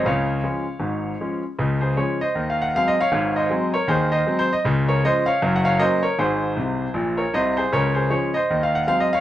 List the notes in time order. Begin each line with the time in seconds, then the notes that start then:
0.05 C#2 C#3 C#5 F5
0.43 F3 G#3 C#4
0.80 G#1 G#2
1.20 F3 G#3 C#4
1.58 C#2 C#3
1.81 G#4 C5
1.97 F3 G#3 C#4 G#4 C#5
2.21 C5 D#5
2.35 D#2 D#3
2.50 F5
2.62 F#5
2.75 F#3 G#3 C4 F5
2.88 D#5
3.00 C#5 F5
3.12 G#1 G#2
3.36 C5 D#5
3.50 F#3 G#3 C4
3.74 A#4 C#5
3.87 D#2 D#3 G#4 C5
4.12 C5 D#5
4.26 F#3 G#3 C4
4.39 C5
4.53 D#5
4.65 C#2 C#3
4.88 A#4 C#5
5.04 F3 G#3 C#4 C5 D#5
5.26 C#5 F5
5.42 F#1 F#2
5.56 F#5
5.65 C#5 F5
5.79 F#3 A#3 C#4 C5 D#5
6.03 A#4 C#5
6.19 G#1 G#2 G#4 C5
6.56 C2 C3
6.94 A#1 A#2
7.17 A#4 C#5
7.34 C2 C3 C5 D#5
7.57 G#4 C5
7.72 C#2 C#3 A#4 C#5
7.95 G#4 C5
8.10 F3 G#3 C#4 G#4 C#5
8.34 C5 D#5
8.50 D#2 D#3
8.63 F5
8.75 F#5
8.87 F#3 G#3 C4 F5
9.00 D#5
9.13 C#5 F5